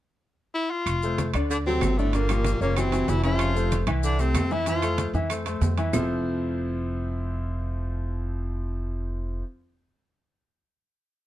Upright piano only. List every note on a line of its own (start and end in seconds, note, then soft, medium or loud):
1.03 1.29 A3 medium
1.03 1.29 A4 medium
1.03 1.29 C5 medium
1.34 1.60 D3 medium
1.34 1.60 D4 medium
1.34 1.61 D5 medium
1.66 1.92 F#3 medium
1.66 1.92 F#4 medium
1.66 1.93 A4 medium
1.98 2.11 D3 medium
1.98 2.11 D4 medium
1.98 2.11 D5 medium
2.14 2.27 D3 medium
2.14 2.27 D4 medium
2.14 2.27 D5 medium
2.30 2.55 F3 medium
2.30 2.56 F4 medium
2.30 2.56 G4 medium
2.61 2.74 C#3 medium
2.61 2.74 C#4 medium
2.61 2.74 C#5 medium
2.77 2.90 E3 medium
2.77 2.90 E4 medium
2.77 2.90 F#4 medium
2.93 3.19 E3 medium
2.93 3.19 E4 medium
2.93 3.19 F#4 medium
3.24 3.50 C#3 medium
3.24 3.50 C#4 medium
3.24 3.50 E5 medium
3.55 3.82 A3 medium
3.55 3.82 A4 medium
3.55 3.82 C5 medium
3.87 4.13 E3 medium
3.87 4.13 E4 medium
3.87 4.14 E5 medium
4.19 4.45 A3 medium
4.19 4.45 A4 medium
4.19 4.45 C5 medium
4.51 4.64 E3 medium
4.51 4.64 E4 medium
4.51 4.64 E5 medium
4.67 4.80 E3 medium
4.67 4.80 E4 medium
4.67 4.81 E5 medium
4.83 5.08 A3 medium
4.83 5.09 A4 medium
4.83 5.09 C5 medium
5.14 5.27 E3 medium
5.14 5.27 E4 medium
5.14 5.28 E5 medium
5.30 5.43 A3 medium
5.30 5.43 A4 medium
5.30 5.43 C5 medium
5.46 5.72 A3 medium
5.46 5.72 A4 medium
5.46 5.72 C5 medium
5.78 5.91 E3 medium
5.78 5.91 E4 medium
5.78 5.91 E5 medium
5.93 9.41 F3 medium
5.93 9.41 C4 medium
5.93 9.42 E4 medium
5.93 9.42 F4 medium
5.93 9.42 A4 medium
5.93 9.42 C5 loud